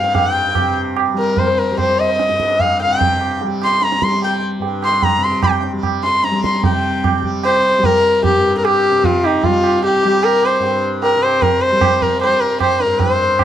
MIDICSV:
0, 0, Header, 1, 5, 480
1, 0, Start_track
1, 0, Tempo, 405680
1, 180, Time_signature, 4, 2, 24, 8
1, 7859, Tempo, 397088
1, 16076, End_track
2, 0, Start_track
2, 0, Title_t, "Harmonium"
2, 0, Program_c, 0, 20
2, 48, Note_on_c, 0, 77, 54
2, 293, Note_on_c, 0, 79, 56
2, 303, Note_off_c, 0, 77, 0
2, 976, Note_off_c, 0, 79, 0
2, 1497, Note_on_c, 0, 70, 44
2, 1733, Note_on_c, 0, 72, 55
2, 1753, Note_off_c, 0, 70, 0
2, 2209, Note_off_c, 0, 72, 0
2, 2227, Note_on_c, 0, 72, 51
2, 2468, Note_on_c, 0, 75, 56
2, 2480, Note_off_c, 0, 72, 0
2, 3195, Note_on_c, 0, 77, 59
2, 3216, Note_off_c, 0, 75, 0
2, 3435, Note_on_c, 0, 79, 62
2, 3445, Note_off_c, 0, 77, 0
2, 4110, Note_off_c, 0, 79, 0
2, 4397, Note_on_c, 0, 84, 60
2, 4639, Note_on_c, 0, 82, 56
2, 4645, Note_off_c, 0, 84, 0
2, 4886, Note_off_c, 0, 82, 0
2, 4886, Note_on_c, 0, 84, 58
2, 5116, Note_on_c, 0, 79, 44
2, 5129, Note_off_c, 0, 84, 0
2, 5339, Note_off_c, 0, 79, 0
2, 5842, Note_on_c, 0, 84, 64
2, 6061, Note_off_c, 0, 84, 0
2, 6074, Note_on_c, 0, 82, 65
2, 6551, Note_on_c, 0, 79, 46
2, 6566, Note_off_c, 0, 82, 0
2, 6773, Note_off_c, 0, 79, 0
2, 7270, Note_on_c, 0, 84, 61
2, 7422, Note_off_c, 0, 84, 0
2, 7440, Note_on_c, 0, 84, 46
2, 7510, Note_off_c, 0, 84, 0
2, 7523, Note_on_c, 0, 82, 60
2, 7958, Note_off_c, 0, 82, 0
2, 15662, Note_on_c, 0, 72, 70
2, 16076, Note_off_c, 0, 72, 0
2, 16076, End_track
3, 0, Start_track
3, 0, Title_t, "Sarangi"
3, 0, Program_c, 1, 110
3, 0, Note_on_c, 1, 77, 76
3, 167, Note_on_c, 1, 79, 87
3, 185, Note_off_c, 1, 77, 0
3, 900, Note_off_c, 1, 79, 0
3, 1399, Note_on_c, 1, 70, 71
3, 1638, Note_on_c, 1, 72, 73
3, 1656, Note_off_c, 1, 70, 0
3, 1874, Note_on_c, 1, 70, 74
3, 1892, Note_off_c, 1, 72, 0
3, 2115, Note_off_c, 1, 70, 0
3, 2120, Note_on_c, 1, 72, 82
3, 2364, Note_on_c, 1, 75, 90
3, 2382, Note_off_c, 1, 72, 0
3, 3083, Note_on_c, 1, 77, 89
3, 3101, Note_off_c, 1, 75, 0
3, 3321, Note_off_c, 1, 77, 0
3, 3332, Note_on_c, 1, 79, 90
3, 3999, Note_off_c, 1, 79, 0
3, 4307, Note_on_c, 1, 84, 91
3, 4533, Note_on_c, 1, 82, 93
3, 4551, Note_off_c, 1, 84, 0
3, 4772, Note_on_c, 1, 84, 86
3, 4789, Note_off_c, 1, 82, 0
3, 5005, Note_off_c, 1, 84, 0
3, 5015, Note_on_c, 1, 79, 74
3, 5230, Note_off_c, 1, 79, 0
3, 5740, Note_on_c, 1, 84, 89
3, 5961, Note_on_c, 1, 82, 95
3, 5979, Note_off_c, 1, 84, 0
3, 6197, Note_on_c, 1, 84, 90
3, 6214, Note_off_c, 1, 82, 0
3, 6421, Note_off_c, 1, 84, 0
3, 6429, Note_on_c, 1, 79, 68
3, 6652, Note_off_c, 1, 79, 0
3, 7142, Note_on_c, 1, 84, 83
3, 7384, Note_on_c, 1, 82, 85
3, 7402, Note_off_c, 1, 84, 0
3, 7616, Note_off_c, 1, 82, 0
3, 7623, Note_on_c, 1, 84, 78
3, 7844, Note_off_c, 1, 84, 0
3, 7867, Note_on_c, 1, 79, 78
3, 8543, Note_off_c, 1, 79, 0
3, 8832, Note_on_c, 1, 72, 102
3, 9319, Note_on_c, 1, 70, 102
3, 9338, Note_off_c, 1, 72, 0
3, 9789, Note_off_c, 1, 70, 0
3, 9796, Note_on_c, 1, 67, 93
3, 10174, Note_off_c, 1, 67, 0
3, 10203, Note_on_c, 1, 70, 65
3, 10283, Note_on_c, 1, 67, 98
3, 10301, Note_off_c, 1, 70, 0
3, 10765, Note_on_c, 1, 65, 90
3, 10783, Note_off_c, 1, 67, 0
3, 11017, Note_on_c, 1, 63, 80
3, 11035, Note_off_c, 1, 65, 0
3, 11249, Note_on_c, 1, 65, 87
3, 11267, Note_off_c, 1, 63, 0
3, 11723, Note_off_c, 1, 65, 0
3, 11730, Note_on_c, 1, 67, 94
3, 12209, Note_on_c, 1, 70, 96
3, 12227, Note_off_c, 1, 67, 0
3, 12465, Note_on_c, 1, 72, 83
3, 12483, Note_off_c, 1, 70, 0
3, 12933, Note_off_c, 1, 72, 0
3, 13164, Note_on_c, 1, 70, 90
3, 13402, Note_on_c, 1, 72, 95
3, 13420, Note_off_c, 1, 70, 0
3, 13634, Note_on_c, 1, 70, 92
3, 13652, Note_off_c, 1, 72, 0
3, 13869, Note_on_c, 1, 72, 104
3, 13887, Note_off_c, 1, 70, 0
3, 14358, Note_on_c, 1, 70, 91
3, 14376, Note_off_c, 1, 72, 0
3, 14588, Note_off_c, 1, 70, 0
3, 14595, Note_on_c, 1, 72, 99
3, 14825, Note_on_c, 1, 70, 88
3, 14843, Note_off_c, 1, 72, 0
3, 15066, Note_off_c, 1, 70, 0
3, 15072, Note_on_c, 1, 72, 92
3, 15310, Note_on_c, 1, 70, 85
3, 15328, Note_off_c, 1, 72, 0
3, 15542, Note_on_c, 1, 72, 91
3, 15560, Note_off_c, 1, 70, 0
3, 16076, Note_off_c, 1, 72, 0
3, 16076, End_track
4, 0, Start_track
4, 0, Title_t, "Tanpura"
4, 0, Program_c, 2, 104
4, 0, Note_on_c, 2, 43, 58
4, 0, Note_on_c, 2, 48, 57
4, 0, Note_on_c, 2, 55, 49
4, 660, Note_off_c, 2, 48, 0
4, 664, Note_on_c, 2, 48, 55
4, 1349, Note_off_c, 2, 55, 0
4, 1349, Note_on_c, 2, 55, 53
4, 2032, Note_off_c, 2, 55, 0
4, 2032, Note_on_c, 2, 55, 56
4, 2704, Note_off_c, 2, 43, 0
4, 2709, Note_on_c, 2, 43, 55
4, 3372, Note_off_c, 2, 48, 0
4, 3377, Note_on_c, 2, 48, 55
4, 4062, Note_off_c, 2, 55, 0
4, 4062, Note_on_c, 2, 55, 53
4, 4760, Note_off_c, 2, 55, 0
4, 4760, Note_on_c, 2, 55, 58
4, 5428, Note_off_c, 2, 43, 0
4, 5433, Note_on_c, 2, 43, 61
4, 6117, Note_off_c, 2, 48, 0
4, 6122, Note_on_c, 2, 48, 60
4, 6782, Note_off_c, 2, 55, 0
4, 6782, Note_on_c, 2, 55, 54
4, 7468, Note_off_c, 2, 55, 0
4, 7468, Note_on_c, 2, 55, 56
4, 7866, Note_off_c, 2, 48, 0
4, 7866, Note_on_c, 2, 48, 57
4, 8545, Note_off_c, 2, 55, 0
4, 8545, Note_on_c, 2, 55, 61
4, 9244, Note_off_c, 2, 55, 0
4, 9244, Note_on_c, 2, 55, 67
4, 9923, Note_off_c, 2, 43, 0
4, 9928, Note_on_c, 2, 43, 57
4, 10590, Note_off_c, 2, 48, 0
4, 10590, Note_on_c, 2, 48, 61
4, 11275, Note_off_c, 2, 55, 0
4, 11275, Note_on_c, 2, 55, 61
4, 11975, Note_off_c, 2, 55, 0
4, 11975, Note_on_c, 2, 55, 69
4, 12628, Note_off_c, 2, 43, 0
4, 12633, Note_on_c, 2, 43, 59
4, 13313, Note_off_c, 2, 48, 0
4, 13318, Note_on_c, 2, 48, 57
4, 13997, Note_off_c, 2, 55, 0
4, 13997, Note_on_c, 2, 55, 63
4, 14670, Note_off_c, 2, 55, 0
4, 14670, Note_on_c, 2, 55, 55
4, 15337, Note_off_c, 2, 43, 0
4, 15342, Note_on_c, 2, 43, 61
4, 16027, Note_off_c, 2, 48, 0
4, 16032, Note_on_c, 2, 48, 59
4, 16076, Note_off_c, 2, 43, 0
4, 16076, Note_off_c, 2, 48, 0
4, 16076, Note_off_c, 2, 55, 0
4, 16076, End_track
5, 0, Start_track
5, 0, Title_t, "Tabla"
5, 50, Note_on_c, 9, 62, 55
5, 168, Note_off_c, 9, 62, 0
5, 175, Note_on_c, 9, 63, 94
5, 175, Note_on_c, 9, 64, 83
5, 293, Note_off_c, 9, 63, 0
5, 293, Note_off_c, 9, 64, 0
5, 653, Note_on_c, 9, 60, 76
5, 653, Note_on_c, 9, 64, 75
5, 771, Note_off_c, 9, 60, 0
5, 771, Note_off_c, 9, 64, 0
5, 1142, Note_on_c, 9, 60, 72
5, 1261, Note_off_c, 9, 60, 0
5, 1618, Note_on_c, 9, 63, 70
5, 1618, Note_on_c, 9, 64, 67
5, 1737, Note_off_c, 9, 63, 0
5, 1737, Note_off_c, 9, 64, 0
5, 2109, Note_on_c, 9, 63, 70
5, 2109, Note_on_c, 9, 64, 64
5, 2227, Note_off_c, 9, 63, 0
5, 2227, Note_off_c, 9, 64, 0
5, 2596, Note_on_c, 9, 62, 80
5, 2714, Note_off_c, 9, 62, 0
5, 2714, Note_on_c, 9, 62, 59
5, 2832, Note_off_c, 9, 62, 0
5, 2836, Note_on_c, 9, 37, 63
5, 2954, Note_off_c, 9, 37, 0
5, 2958, Note_on_c, 9, 62, 57
5, 3072, Note_on_c, 9, 63, 73
5, 3072, Note_on_c, 9, 64, 62
5, 3077, Note_off_c, 9, 62, 0
5, 3191, Note_off_c, 9, 63, 0
5, 3191, Note_off_c, 9, 64, 0
5, 3560, Note_on_c, 9, 63, 69
5, 3560, Note_on_c, 9, 64, 67
5, 3678, Note_off_c, 9, 63, 0
5, 3678, Note_off_c, 9, 64, 0
5, 3799, Note_on_c, 9, 60, 57
5, 3917, Note_off_c, 9, 60, 0
5, 4040, Note_on_c, 9, 63, 74
5, 4158, Note_off_c, 9, 63, 0
5, 4279, Note_on_c, 9, 60, 55
5, 4398, Note_off_c, 9, 60, 0
5, 4519, Note_on_c, 9, 62, 77
5, 4637, Note_off_c, 9, 62, 0
5, 4641, Note_on_c, 9, 62, 61
5, 4757, Note_on_c, 9, 37, 58
5, 4760, Note_off_c, 9, 62, 0
5, 4875, Note_off_c, 9, 37, 0
5, 4880, Note_on_c, 9, 62, 57
5, 4996, Note_on_c, 9, 63, 69
5, 4998, Note_off_c, 9, 62, 0
5, 5114, Note_off_c, 9, 63, 0
5, 5467, Note_on_c, 9, 63, 70
5, 5585, Note_off_c, 9, 63, 0
5, 5710, Note_on_c, 9, 60, 53
5, 5828, Note_off_c, 9, 60, 0
5, 5945, Note_on_c, 9, 63, 74
5, 5945, Note_on_c, 9, 64, 61
5, 6063, Note_off_c, 9, 63, 0
5, 6063, Note_off_c, 9, 64, 0
5, 6420, Note_on_c, 9, 60, 83
5, 6420, Note_on_c, 9, 64, 75
5, 6539, Note_off_c, 9, 60, 0
5, 6539, Note_off_c, 9, 64, 0
5, 6663, Note_on_c, 9, 62, 63
5, 6782, Note_off_c, 9, 62, 0
5, 6901, Note_on_c, 9, 60, 70
5, 6901, Note_on_c, 9, 64, 64
5, 7020, Note_off_c, 9, 60, 0
5, 7020, Note_off_c, 9, 64, 0
5, 7140, Note_on_c, 9, 62, 53
5, 7258, Note_off_c, 9, 62, 0
5, 7380, Note_on_c, 9, 62, 73
5, 7496, Note_off_c, 9, 62, 0
5, 7496, Note_on_c, 9, 62, 56
5, 7614, Note_off_c, 9, 62, 0
5, 7621, Note_on_c, 9, 37, 56
5, 7739, Note_off_c, 9, 37, 0
5, 7742, Note_on_c, 9, 62, 52
5, 7851, Note_on_c, 9, 63, 97
5, 7851, Note_on_c, 9, 64, 89
5, 7860, Note_off_c, 9, 62, 0
5, 7971, Note_off_c, 9, 63, 0
5, 7971, Note_off_c, 9, 64, 0
5, 8343, Note_on_c, 9, 60, 85
5, 8343, Note_on_c, 9, 64, 77
5, 8464, Note_off_c, 9, 60, 0
5, 8464, Note_off_c, 9, 64, 0
5, 8578, Note_on_c, 9, 64, 59
5, 8699, Note_off_c, 9, 64, 0
5, 8817, Note_on_c, 9, 60, 74
5, 8938, Note_off_c, 9, 60, 0
5, 9300, Note_on_c, 9, 63, 74
5, 9300, Note_on_c, 9, 64, 69
5, 9421, Note_off_c, 9, 63, 0
5, 9421, Note_off_c, 9, 64, 0
5, 9791, Note_on_c, 9, 63, 73
5, 9791, Note_on_c, 9, 64, 73
5, 9912, Note_off_c, 9, 63, 0
5, 9912, Note_off_c, 9, 64, 0
5, 10283, Note_on_c, 9, 60, 88
5, 10404, Note_off_c, 9, 60, 0
5, 10755, Note_on_c, 9, 63, 78
5, 10755, Note_on_c, 9, 64, 68
5, 10876, Note_off_c, 9, 63, 0
5, 10876, Note_off_c, 9, 64, 0
5, 11001, Note_on_c, 9, 60, 61
5, 11122, Note_off_c, 9, 60, 0
5, 11236, Note_on_c, 9, 63, 80
5, 11236, Note_on_c, 9, 64, 66
5, 11357, Note_off_c, 9, 63, 0
5, 11357, Note_off_c, 9, 64, 0
5, 11478, Note_on_c, 9, 60, 62
5, 11599, Note_off_c, 9, 60, 0
5, 11718, Note_on_c, 9, 63, 74
5, 11839, Note_off_c, 9, 63, 0
5, 11958, Note_on_c, 9, 60, 61
5, 12079, Note_off_c, 9, 60, 0
5, 12195, Note_on_c, 9, 60, 80
5, 12316, Note_off_c, 9, 60, 0
5, 12435, Note_on_c, 9, 60, 66
5, 12556, Note_off_c, 9, 60, 0
5, 12681, Note_on_c, 9, 63, 77
5, 12802, Note_off_c, 9, 63, 0
5, 13158, Note_on_c, 9, 63, 78
5, 13279, Note_off_c, 9, 63, 0
5, 13400, Note_on_c, 9, 60, 60
5, 13521, Note_off_c, 9, 60, 0
5, 13636, Note_on_c, 9, 63, 78
5, 13636, Note_on_c, 9, 64, 65
5, 13757, Note_off_c, 9, 63, 0
5, 13757, Note_off_c, 9, 64, 0
5, 14110, Note_on_c, 9, 60, 84
5, 14110, Note_on_c, 9, 64, 74
5, 14231, Note_off_c, 9, 60, 0
5, 14231, Note_off_c, 9, 64, 0
5, 14359, Note_on_c, 9, 64, 55
5, 14480, Note_off_c, 9, 64, 0
5, 14593, Note_on_c, 9, 60, 72
5, 14713, Note_off_c, 9, 60, 0
5, 15066, Note_on_c, 9, 60, 74
5, 15066, Note_on_c, 9, 64, 68
5, 15187, Note_off_c, 9, 60, 0
5, 15187, Note_off_c, 9, 64, 0
5, 15304, Note_on_c, 9, 62, 58
5, 15424, Note_off_c, 9, 62, 0
5, 15538, Note_on_c, 9, 63, 94
5, 15538, Note_on_c, 9, 64, 90
5, 15659, Note_off_c, 9, 63, 0
5, 15659, Note_off_c, 9, 64, 0
5, 16018, Note_on_c, 9, 60, 85
5, 16018, Note_on_c, 9, 64, 77
5, 16076, Note_off_c, 9, 60, 0
5, 16076, Note_off_c, 9, 64, 0
5, 16076, End_track
0, 0, End_of_file